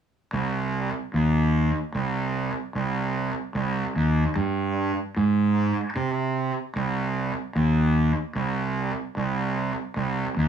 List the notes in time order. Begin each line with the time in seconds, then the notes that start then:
0.33 C2
1.14 D#2
1.95 C2
2.75 C2
3.55 C2
3.96 D#2
4.36 G2
5.16 G#2
5.96 C3
6.76 C2
7.55 D#2
8.35 C2
9.17 C2
9.96 C2
10.37 D#2